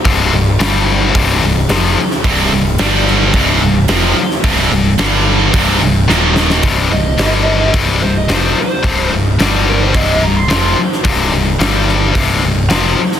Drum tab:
HH |o---o---o---o---|o---o---o---o---|o---o---o-------|o---o---o---o---|
SD |----o-------o--o|----o-o-----o--o|----o-------o-oo|----o-------o---|
BD |o-------o-------|o-------o-------|o-------o-------|o-------o-------|

HH |o---o---o---o---|o---o---o---o---|
SD |----o-------o--o|----o-o-----o--o|
BD |o-------o-------|o-------o-------|